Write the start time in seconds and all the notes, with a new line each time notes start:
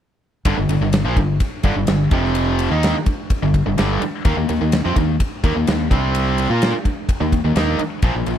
0.45 G1 G2 D3, kick, ride
0.58 G1 G2 D3
0.69 G1 G2 D3, ride
0.81 G1 G2 D3
0.93 snare, ride
1.04 A#1 A#2 F3
1.17 G1 G2 D3, kick, ride
1.40 kick, ride
1.63 G1 G2 D3, kick, ride
1.76 G1 G2 D3
1.87 G1 G2 D3, snare, ride
2.11 F1 F2 C3 F3, kick, ride
2.25 snare
2.35 ride
2.59 ride
2.70 D#2 D#3 A#3 D#4
2.83 snare, ride
3.06 kick, ride
3.30 kick, ride
3.42 G1 G2 D3
3.54 kick, ride
3.66 G1 G2 D3
3.78 G1 G2 D3 G3, snare, ride
4.02 muted distorted electric guitar stroke, muted overdriven electric guitar stroke, ride
4.25 D#2 D#3 A#3, kick, ride
4.37 D#2 D#3 A#3
4.49 D#2 D#3 A#3, ride
4.61 D#2 D#3 A#3
4.72 snare, ride
4.85 F2 F3 C4, snare
4.96 D#2 D#3 A#3, kick, ride
5.20 kick, ride
5.44 D#2 D#3 A#3, kick, ride
5.56 D#2 D#3 A#3
5.67 D#2 D#3 A#3, snare, ride
5.91 C2 C3 G3 C4, kick, ride
6.15 ride
6.38 ride
6.49 A#2 A#3 F4 A#4
6.62 snare, ride
6.85 kick, ride
7.09 kick, ride
7.21 D#2 D#3 A#3
7.32 kick, ride
7.44 D#2 D#3 A#3
7.56 D#2 D#3 A#3 D#4, snare, ride
7.79 muted fingered electric bass stroke, muted distorted electric guitar stroke, muted overdriven electric guitar stroke, ride
8.02 A#1 A#2 F3, kick, ride
8.15 A#1 A#2 F3
8.26 A#1 A#2 F3, ride